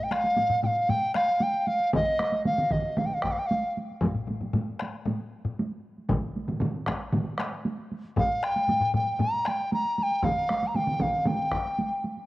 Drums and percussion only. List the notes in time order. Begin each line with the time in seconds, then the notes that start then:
0.11 taiko rim, taiko high
0.24 taiko high
0.37 taiko low-mid, taiko high
0.50 taiko low-mid, taiko high
0.63 taiko low-mid, taiko high
0.76 taiko high
0.89 taiko low-mid, taiko high
1.02 taiko high
1.15 taiko rim, taiko high
1.28 taiko high
1.40 taiko high
1.54 taiko high
1.67 taiko high
1.80 taiko high
1.93 taiko, taiko mid, taiko high
2.19 taiko rim, taiko high
2.32 taiko high
2.45 taiko mid, taiko high
2.58 taiko mid, taiko high
2.71 taiko, taiko mid
2.84 taiko high
2.97 taiko mid, taiko high
3.12 taiko high
3.22 taiko rim, taiko, taiko high
3.37 taiko high
3.51 taiko high
3.65 taiko high
3.77 taiko high
3.91 taiko high
4.01 taiko, taiko low-mid, taiko high
4.15 taiko low-mid
4.27 taiko low-mid, taiko high
4.41 taiko low-mid, taiko high
4.53 taiko low-mid, taiko high
4.69 taiko high
4.79 taiko rim, taiko high
4.95 taiko high
5.06 taiko low-mid, taiko high
5.20 taiko high
5.45 taiko low-mid, taiko high
5.59 taiko high
5.72 taiko high
5.98 taiko high
6.09 taiko, taiko low-mid, taiko mid, taiko high
6.36 taiko high
6.48 taiko low-mid, taiko mid, taiko high
6.60 taiko low-mid, taiko mid, taiko high
6.76 taiko high
6.86 taiko rim, taiko, taiko high
7.02 taiko high
7.12 taiko low-mid, taiko mid, taiko high
7.27 taiko high
7.38 taiko rim, taiko high
7.40 taiko rim
7.52 taiko high
7.65 taiko high
7.79 taiko high
7.92 taiko high
8.05 taiko high
8.16 taiko, taiko low-mid, taiko high
8.43 taiko rim
8.56 taiko high
8.68 taiko low-mid, taiko high
8.81 taiko low-mid, taiko high
8.94 taiko low-mid, taiko high
9.07 taiko high
9.19 taiko low-mid, taiko high
9.34 taiko high
9.45 taiko rim, taiko high
9.60 taiko high
9.72 taiko high
9.85 taiko high
9.98 taiko high
10.12 taiko high
10.23 taiko, taiko mid, taiko high
10.37 taiko high
10.49 taiko rim, taiko high
10.63 taiko high
10.74 taiko mid, taiko high
10.87 taiko mid, taiko high
10.99 taiko, taiko mid, taiko high
11.13 taiko high
11.25 taiko mid, taiko high
11.40 taiko high
11.51 taiko rim, taiko
11.66 taiko high
11.78 taiko high
11.90 taiko high
12.04 taiko high
12.17 taiko high